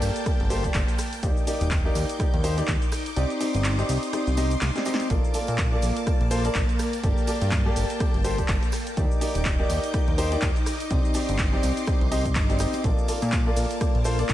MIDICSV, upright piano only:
0, 0, Header, 1, 2, 480
1, 0, Start_track
1, 0, Tempo, 483871
1, 1219, Time_signature, 4, 2, 24, 8
1, 14222, End_track
2, 0, Start_track
2, 0, Title_t, "Upright piano"
2, 0, Program_c, 0, 0
2, 0, Note_on_c, 0, 58, 89
2, 0, Note_on_c, 0, 67, 79
2, 0, Note_on_c, 0, 69, 77
2, 0, Note_on_c, 0, 74, 96
2, 234, Note_off_c, 0, 58, 0
2, 234, Note_off_c, 0, 67, 0
2, 234, Note_off_c, 0, 69, 0
2, 234, Note_off_c, 0, 74, 0
2, 258, Note_on_c, 0, 58, 77
2, 258, Note_on_c, 0, 67, 68
2, 258, Note_on_c, 0, 69, 68
2, 258, Note_on_c, 0, 74, 84
2, 395, Note_off_c, 0, 58, 0
2, 395, Note_off_c, 0, 67, 0
2, 395, Note_off_c, 0, 69, 0
2, 395, Note_off_c, 0, 74, 0
2, 498, Note_on_c, 0, 58, 102
2, 498, Note_on_c, 0, 67, 95
2, 498, Note_on_c, 0, 69, 94
2, 498, Note_on_c, 0, 72, 113
2, 616, Note_off_c, 0, 58, 0
2, 616, Note_off_c, 0, 67, 0
2, 616, Note_off_c, 0, 69, 0
2, 616, Note_off_c, 0, 72, 0
2, 636, Note_on_c, 0, 58, 95
2, 637, Note_on_c, 0, 67, 88
2, 637, Note_on_c, 0, 69, 88
2, 637, Note_on_c, 0, 74, 105
2, 737, Note_off_c, 0, 58, 0
2, 737, Note_off_c, 0, 67, 0
2, 737, Note_off_c, 0, 69, 0
2, 737, Note_off_c, 0, 74, 0
2, 1218, Note_on_c, 0, 63, 71
2, 1218, Note_on_c, 0, 74, 87
2, 1219, Note_on_c, 0, 58, 75
2, 1219, Note_on_c, 0, 67, 70
2, 1434, Note_off_c, 0, 58, 0
2, 1434, Note_off_c, 0, 63, 0
2, 1434, Note_off_c, 0, 67, 0
2, 1434, Note_off_c, 0, 74, 0
2, 1458, Note_on_c, 0, 58, 82
2, 1458, Note_on_c, 0, 63, 74
2, 1458, Note_on_c, 0, 67, 72
2, 1458, Note_on_c, 0, 74, 89
2, 1803, Note_off_c, 0, 58, 0
2, 1803, Note_off_c, 0, 63, 0
2, 1803, Note_off_c, 0, 67, 0
2, 1803, Note_off_c, 0, 74, 0
2, 1837, Note_on_c, 0, 58, 89
2, 1837, Note_on_c, 0, 63, 83
2, 1837, Note_on_c, 0, 67, 81
2, 1837, Note_on_c, 0, 74, 94
2, 2154, Note_off_c, 0, 58, 0
2, 2154, Note_off_c, 0, 63, 0
2, 2154, Note_off_c, 0, 67, 0
2, 2154, Note_off_c, 0, 74, 0
2, 2179, Note_on_c, 0, 58, 77
2, 2179, Note_on_c, 0, 63, 67
2, 2179, Note_on_c, 0, 67, 71
2, 2179, Note_on_c, 0, 74, 89
2, 2315, Note_off_c, 0, 58, 0
2, 2315, Note_off_c, 0, 63, 0
2, 2315, Note_off_c, 0, 67, 0
2, 2315, Note_off_c, 0, 74, 0
2, 2418, Note_on_c, 0, 63, 96
2, 2418, Note_on_c, 0, 67, 94
2, 2418, Note_on_c, 0, 72, 113
2, 2419, Note_on_c, 0, 58, 103
2, 2536, Note_off_c, 0, 58, 0
2, 2536, Note_off_c, 0, 63, 0
2, 2536, Note_off_c, 0, 67, 0
2, 2536, Note_off_c, 0, 72, 0
2, 2557, Note_on_c, 0, 58, 94
2, 2557, Note_on_c, 0, 63, 90
2, 2557, Note_on_c, 0, 67, 90
2, 2557, Note_on_c, 0, 74, 108
2, 2657, Note_off_c, 0, 58, 0
2, 2657, Note_off_c, 0, 63, 0
2, 2657, Note_off_c, 0, 74, 0
2, 2658, Note_off_c, 0, 67, 0
2, 3139, Note_on_c, 0, 60, 77
2, 3139, Note_on_c, 0, 63, 69
2, 3139, Note_on_c, 0, 67, 74
2, 3139, Note_on_c, 0, 74, 87
2, 3354, Note_off_c, 0, 60, 0
2, 3354, Note_off_c, 0, 63, 0
2, 3354, Note_off_c, 0, 67, 0
2, 3354, Note_off_c, 0, 74, 0
2, 3378, Note_on_c, 0, 60, 80
2, 3378, Note_on_c, 0, 74, 86
2, 3379, Note_on_c, 0, 63, 70
2, 3379, Note_on_c, 0, 67, 71
2, 3723, Note_off_c, 0, 60, 0
2, 3723, Note_off_c, 0, 74, 0
2, 3724, Note_off_c, 0, 63, 0
2, 3724, Note_off_c, 0, 67, 0
2, 3757, Note_on_c, 0, 60, 85
2, 3757, Note_on_c, 0, 63, 81
2, 3757, Note_on_c, 0, 67, 81
2, 3757, Note_on_c, 0, 74, 95
2, 4074, Note_off_c, 0, 60, 0
2, 4074, Note_off_c, 0, 63, 0
2, 4074, Note_off_c, 0, 67, 0
2, 4074, Note_off_c, 0, 74, 0
2, 4099, Note_on_c, 0, 60, 74
2, 4099, Note_on_c, 0, 63, 68
2, 4099, Note_on_c, 0, 67, 71
2, 4099, Note_on_c, 0, 74, 85
2, 4235, Note_off_c, 0, 60, 0
2, 4235, Note_off_c, 0, 63, 0
2, 4235, Note_off_c, 0, 67, 0
2, 4235, Note_off_c, 0, 74, 0
2, 4338, Note_on_c, 0, 63, 82
2, 4339, Note_on_c, 0, 60, 85
2, 4339, Note_on_c, 0, 67, 79
2, 4339, Note_on_c, 0, 75, 97
2, 4475, Note_off_c, 0, 60, 0
2, 4475, Note_off_c, 0, 63, 0
2, 4475, Note_off_c, 0, 67, 0
2, 4475, Note_off_c, 0, 75, 0
2, 4716, Note_on_c, 0, 60, 73
2, 4716, Note_on_c, 0, 63, 69
2, 4716, Note_on_c, 0, 67, 70
2, 4716, Note_on_c, 0, 74, 83
2, 4794, Note_off_c, 0, 60, 0
2, 4794, Note_off_c, 0, 63, 0
2, 4794, Note_off_c, 0, 67, 0
2, 4794, Note_off_c, 0, 74, 0
2, 4819, Note_on_c, 0, 60, 97
2, 4819, Note_on_c, 0, 63, 83
2, 4819, Note_on_c, 0, 67, 88
2, 4819, Note_on_c, 0, 75, 101
2, 5016, Note_off_c, 0, 60, 0
2, 5016, Note_off_c, 0, 63, 0
2, 5016, Note_off_c, 0, 67, 0
2, 5016, Note_off_c, 0, 75, 0
2, 5058, Note_on_c, 0, 58, 79
2, 5058, Note_on_c, 0, 65, 72
2, 5058, Note_on_c, 0, 69, 71
2, 5058, Note_on_c, 0, 74, 85
2, 5274, Note_off_c, 0, 58, 0
2, 5274, Note_off_c, 0, 65, 0
2, 5274, Note_off_c, 0, 69, 0
2, 5274, Note_off_c, 0, 74, 0
2, 5298, Note_on_c, 0, 58, 75
2, 5299, Note_on_c, 0, 65, 73
2, 5299, Note_on_c, 0, 69, 71
2, 5299, Note_on_c, 0, 74, 85
2, 5643, Note_off_c, 0, 58, 0
2, 5644, Note_off_c, 0, 65, 0
2, 5644, Note_off_c, 0, 69, 0
2, 5644, Note_off_c, 0, 74, 0
2, 5676, Note_on_c, 0, 58, 88
2, 5676, Note_on_c, 0, 65, 81
2, 5676, Note_on_c, 0, 69, 77
2, 5676, Note_on_c, 0, 74, 98
2, 5994, Note_off_c, 0, 58, 0
2, 5994, Note_off_c, 0, 65, 0
2, 5994, Note_off_c, 0, 69, 0
2, 5994, Note_off_c, 0, 74, 0
2, 6018, Note_on_c, 0, 58, 77
2, 6018, Note_on_c, 0, 65, 70
2, 6018, Note_on_c, 0, 69, 66
2, 6018, Note_on_c, 0, 74, 81
2, 6155, Note_off_c, 0, 58, 0
2, 6155, Note_off_c, 0, 65, 0
2, 6155, Note_off_c, 0, 69, 0
2, 6155, Note_off_c, 0, 74, 0
2, 6258, Note_on_c, 0, 58, 100
2, 6258, Note_on_c, 0, 65, 91
2, 6258, Note_on_c, 0, 69, 92
2, 6258, Note_on_c, 0, 72, 113
2, 6376, Note_off_c, 0, 58, 0
2, 6376, Note_off_c, 0, 65, 0
2, 6376, Note_off_c, 0, 69, 0
2, 6376, Note_off_c, 0, 72, 0
2, 6396, Note_on_c, 0, 69, 87
2, 6397, Note_on_c, 0, 58, 96
2, 6397, Note_on_c, 0, 65, 89
2, 6397, Note_on_c, 0, 74, 110
2, 6497, Note_off_c, 0, 58, 0
2, 6497, Note_off_c, 0, 65, 0
2, 6497, Note_off_c, 0, 69, 0
2, 6497, Note_off_c, 0, 74, 0
2, 6978, Note_on_c, 0, 58, 74
2, 6978, Note_on_c, 0, 67, 71
2, 6978, Note_on_c, 0, 69, 68
2, 6978, Note_on_c, 0, 74, 86
2, 7194, Note_off_c, 0, 58, 0
2, 7194, Note_off_c, 0, 67, 0
2, 7194, Note_off_c, 0, 69, 0
2, 7194, Note_off_c, 0, 74, 0
2, 7218, Note_on_c, 0, 58, 80
2, 7218, Note_on_c, 0, 67, 70
2, 7218, Note_on_c, 0, 69, 70
2, 7218, Note_on_c, 0, 74, 84
2, 7563, Note_off_c, 0, 58, 0
2, 7563, Note_off_c, 0, 67, 0
2, 7563, Note_off_c, 0, 69, 0
2, 7563, Note_off_c, 0, 74, 0
2, 7596, Note_on_c, 0, 58, 89
2, 7596, Note_on_c, 0, 67, 82
2, 7596, Note_on_c, 0, 69, 83
2, 7596, Note_on_c, 0, 74, 99
2, 7914, Note_off_c, 0, 58, 0
2, 7914, Note_off_c, 0, 67, 0
2, 7914, Note_off_c, 0, 69, 0
2, 7914, Note_off_c, 0, 74, 0
2, 7938, Note_on_c, 0, 58, 77
2, 7938, Note_on_c, 0, 67, 72
2, 7938, Note_on_c, 0, 69, 70
2, 7938, Note_on_c, 0, 74, 88
2, 8075, Note_off_c, 0, 58, 0
2, 8075, Note_off_c, 0, 67, 0
2, 8075, Note_off_c, 0, 69, 0
2, 8075, Note_off_c, 0, 74, 0
2, 8178, Note_on_c, 0, 58, 106
2, 8178, Note_on_c, 0, 67, 95
2, 8178, Note_on_c, 0, 69, 95
2, 8179, Note_on_c, 0, 72, 114
2, 8296, Note_off_c, 0, 58, 0
2, 8296, Note_off_c, 0, 67, 0
2, 8296, Note_off_c, 0, 69, 0
2, 8296, Note_off_c, 0, 72, 0
2, 8316, Note_on_c, 0, 58, 98
2, 8316, Note_on_c, 0, 67, 85
2, 8316, Note_on_c, 0, 69, 91
2, 8316, Note_on_c, 0, 74, 105
2, 8417, Note_off_c, 0, 58, 0
2, 8417, Note_off_c, 0, 67, 0
2, 8417, Note_off_c, 0, 69, 0
2, 8417, Note_off_c, 0, 74, 0
2, 8898, Note_on_c, 0, 58, 78
2, 8898, Note_on_c, 0, 63, 73
2, 8898, Note_on_c, 0, 67, 69
2, 8898, Note_on_c, 0, 74, 87
2, 9114, Note_off_c, 0, 58, 0
2, 9114, Note_off_c, 0, 63, 0
2, 9114, Note_off_c, 0, 67, 0
2, 9114, Note_off_c, 0, 74, 0
2, 9138, Note_on_c, 0, 58, 81
2, 9138, Note_on_c, 0, 63, 74
2, 9138, Note_on_c, 0, 67, 72
2, 9138, Note_on_c, 0, 74, 86
2, 9483, Note_off_c, 0, 58, 0
2, 9483, Note_off_c, 0, 63, 0
2, 9483, Note_off_c, 0, 67, 0
2, 9483, Note_off_c, 0, 74, 0
2, 9516, Note_on_c, 0, 67, 81
2, 9517, Note_on_c, 0, 58, 85
2, 9517, Note_on_c, 0, 63, 78
2, 9517, Note_on_c, 0, 74, 99
2, 9834, Note_off_c, 0, 58, 0
2, 9834, Note_off_c, 0, 63, 0
2, 9834, Note_off_c, 0, 67, 0
2, 9834, Note_off_c, 0, 74, 0
2, 9858, Note_on_c, 0, 58, 78
2, 9858, Note_on_c, 0, 67, 70
2, 9858, Note_on_c, 0, 74, 83
2, 9859, Note_on_c, 0, 63, 72
2, 9995, Note_off_c, 0, 58, 0
2, 9995, Note_off_c, 0, 63, 0
2, 9995, Note_off_c, 0, 67, 0
2, 9995, Note_off_c, 0, 74, 0
2, 10098, Note_on_c, 0, 58, 103
2, 10098, Note_on_c, 0, 63, 94
2, 10098, Note_on_c, 0, 67, 91
2, 10098, Note_on_c, 0, 72, 113
2, 10216, Note_off_c, 0, 58, 0
2, 10216, Note_off_c, 0, 63, 0
2, 10216, Note_off_c, 0, 67, 0
2, 10216, Note_off_c, 0, 72, 0
2, 10236, Note_on_c, 0, 67, 89
2, 10237, Note_on_c, 0, 58, 99
2, 10237, Note_on_c, 0, 63, 90
2, 10237, Note_on_c, 0, 74, 107
2, 10337, Note_off_c, 0, 58, 0
2, 10337, Note_off_c, 0, 63, 0
2, 10337, Note_off_c, 0, 67, 0
2, 10337, Note_off_c, 0, 74, 0
2, 10818, Note_on_c, 0, 63, 69
2, 10819, Note_on_c, 0, 60, 79
2, 10819, Note_on_c, 0, 67, 70
2, 10819, Note_on_c, 0, 74, 87
2, 11034, Note_off_c, 0, 60, 0
2, 11034, Note_off_c, 0, 63, 0
2, 11034, Note_off_c, 0, 67, 0
2, 11034, Note_off_c, 0, 74, 0
2, 11058, Note_on_c, 0, 60, 77
2, 11058, Note_on_c, 0, 63, 71
2, 11058, Note_on_c, 0, 67, 75
2, 11058, Note_on_c, 0, 74, 87
2, 11403, Note_off_c, 0, 60, 0
2, 11403, Note_off_c, 0, 63, 0
2, 11403, Note_off_c, 0, 67, 0
2, 11403, Note_off_c, 0, 74, 0
2, 11436, Note_on_c, 0, 60, 89
2, 11436, Note_on_c, 0, 63, 82
2, 11436, Note_on_c, 0, 67, 79
2, 11436, Note_on_c, 0, 74, 97
2, 11754, Note_off_c, 0, 60, 0
2, 11754, Note_off_c, 0, 63, 0
2, 11754, Note_off_c, 0, 67, 0
2, 11754, Note_off_c, 0, 74, 0
2, 11778, Note_on_c, 0, 60, 78
2, 11778, Note_on_c, 0, 63, 69
2, 11778, Note_on_c, 0, 67, 68
2, 11778, Note_on_c, 0, 74, 82
2, 11915, Note_off_c, 0, 60, 0
2, 11915, Note_off_c, 0, 63, 0
2, 11915, Note_off_c, 0, 67, 0
2, 11915, Note_off_c, 0, 74, 0
2, 12018, Note_on_c, 0, 60, 88
2, 12018, Note_on_c, 0, 63, 81
2, 12018, Note_on_c, 0, 67, 80
2, 12018, Note_on_c, 0, 75, 97
2, 12155, Note_off_c, 0, 60, 0
2, 12155, Note_off_c, 0, 63, 0
2, 12155, Note_off_c, 0, 67, 0
2, 12155, Note_off_c, 0, 75, 0
2, 12396, Note_on_c, 0, 60, 74
2, 12396, Note_on_c, 0, 63, 71
2, 12396, Note_on_c, 0, 67, 69
2, 12396, Note_on_c, 0, 74, 87
2, 12474, Note_off_c, 0, 60, 0
2, 12474, Note_off_c, 0, 63, 0
2, 12474, Note_off_c, 0, 67, 0
2, 12474, Note_off_c, 0, 74, 0
2, 12498, Note_on_c, 0, 60, 96
2, 12498, Note_on_c, 0, 63, 86
2, 12498, Note_on_c, 0, 67, 83
2, 12498, Note_on_c, 0, 75, 100
2, 12696, Note_off_c, 0, 60, 0
2, 12696, Note_off_c, 0, 63, 0
2, 12696, Note_off_c, 0, 67, 0
2, 12696, Note_off_c, 0, 75, 0
2, 12738, Note_on_c, 0, 58, 74
2, 12738, Note_on_c, 0, 65, 69
2, 12738, Note_on_c, 0, 69, 70
2, 12738, Note_on_c, 0, 74, 83
2, 12954, Note_off_c, 0, 58, 0
2, 12954, Note_off_c, 0, 65, 0
2, 12954, Note_off_c, 0, 69, 0
2, 12954, Note_off_c, 0, 74, 0
2, 12978, Note_on_c, 0, 58, 77
2, 12978, Note_on_c, 0, 65, 72
2, 12978, Note_on_c, 0, 69, 73
2, 12978, Note_on_c, 0, 74, 83
2, 13323, Note_off_c, 0, 58, 0
2, 13323, Note_off_c, 0, 65, 0
2, 13323, Note_off_c, 0, 69, 0
2, 13323, Note_off_c, 0, 74, 0
2, 13356, Note_on_c, 0, 58, 87
2, 13356, Note_on_c, 0, 65, 83
2, 13356, Note_on_c, 0, 69, 81
2, 13356, Note_on_c, 0, 74, 100
2, 13674, Note_off_c, 0, 58, 0
2, 13674, Note_off_c, 0, 65, 0
2, 13674, Note_off_c, 0, 69, 0
2, 13674, Note_off_c, 0, 74, 0
2, 13698, Note_on_c, 0, 58, 76
2, 13698, Note_on_c, 0, 65, 71
2, 13698, Note_on_c, 0, 69, 68
2, 13698, Note_on_c, 0, 74, 87
2, 13835, Note_off_c, 0, 58, 0
2, 13835, Note_off_c, 0, 65, 0
2, 13835, Note_off_c, 0, 69, 0
2, 13835, Note_off_c, 0, 74, 0
2, 13938, Note_on_c, 0, 58, 102
2, 13938, Note_on_c, 0, 65, 93
2, 13938, Note_on_c, 0, 69, 93
2, 13938, Note_on_c, 0, 72, 112
2, 14056, Note_off_c, 0, 58, 0
2, 14056, Note_off_c, 0, 65, 0
2, 14056, Note_off_c, 0, 69, 0
2, 14056, Note_off_c, 0, 72, 0
2, 14076, Note_on_c, 0, 58, 97
2, 14076, Note_on_c, 0, 65, 90
2, 14076, Note_on_c, 0, 69, 85
2, 14076, Note_on_c, 0, 74, 107
2, 14177, Note_off_c, 0, 58, 0
2, 14177, Note_off_c, 0, 65, 0
2, 14177, Note_off_c, 0, 69, 0
2, 14177, Note_off_c, 0, 74, 0
2, 14222, End_track
0, 0, End_of_file